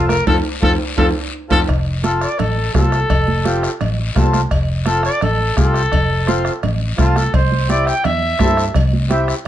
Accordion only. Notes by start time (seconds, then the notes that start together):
Already playing: C4 F4 A4
0.27 C4 F4 A4
0.62 C4 F4 A4
0.98 C4 F4 A4
1.50 C4 F4 A4
2.04 C4 F4 A4
2.74 C4 F4 A4
3.45 C4 F4 G4
4.16 C4 F4 A4
4.87 C4 F4 A4
5.57 C4 F4 G4
6.27 C4 F4 C5
6.98 C4 F4 A4
7.68 C4 E4 G4
8.39 C4 E4 A4
9.09 C4 E4 G4